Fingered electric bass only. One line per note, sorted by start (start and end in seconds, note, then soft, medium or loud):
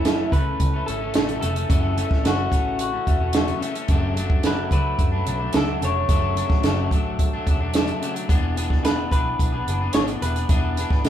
0.00 0.28 F#1 medium
0.32 0.54 C#2 medium
0.59 0.81 C#2 medium
0.87 1.09 G#1 medium
1.15 1.37 A1 medium
1.42 1.64 F1 medium
1.70 2.02 F#1 loud
2.11 2.22 A1 medium
2.24 2.46 F#1 medium
2.52 2.95 A1 medium
3.07 3.51 E1 medium
3.89 4.67 F#1 loud
4.71 4.93 C#2 medium
4.99 5.21 F#2 medium
5.26 5.48 B1 medium
5.54 5.76 C#2 medium
5.81 6.03 F1 loud
6.09 6.42 F#1 loud
6.50 6.61 A1 medium
6.64 6.86 F#1 medium
6.91 7.35 A1 medium
7.46 7.90 E1 medium
8.29 9.07 E1 medium
9.11 9.33 B1 medium
9.39 9.61 B1 medium
9.66 9.89 F#1 medium
9.94 10.16 G#1 medium
10.21 10.43 E1 medium
10.49 10.82 E1 medium
10.90 11.01 G#1 medium
11.04 11.09 B1 medium